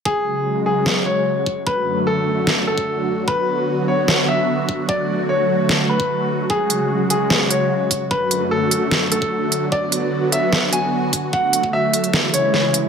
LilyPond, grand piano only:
\new Staff \with { instrumentName = "Grand piano" } { \time 4/4 \key fis \minor \tempo 4 = 149 gis'4. gis'8. r16 cis''4. | b'8. r16 a'4. a'4. | b'4. cis''8. r16 e''4. | d''8. r16 cis''4. b'4. |
gis'4. gis'8. r16 cis''4. | b'8. r16 a'4. a'4. | d''4. e''8. r16 gis''4. | fis''8. r16 e''4. cis''4. | }